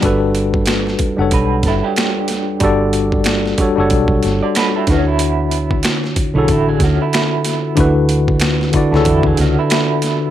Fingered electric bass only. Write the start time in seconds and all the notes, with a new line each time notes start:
0.04 G1
1.00 muted fingered electric bass stroke
1.19 F#1
1.32 B1
1.64 G1
2.62 G1
3.59 muted fingered electric bass stroke
3.78 F#1
3.91 B1
4.24 G1
4.88 D2
6.17 muted fingered electric bass stroke
6.35 B1
6.49 A1
6.81 D2
7.78 D2
8.74 muted fingered electric bass stroke
8.93 C#2
9.06 E2
9.39 C#2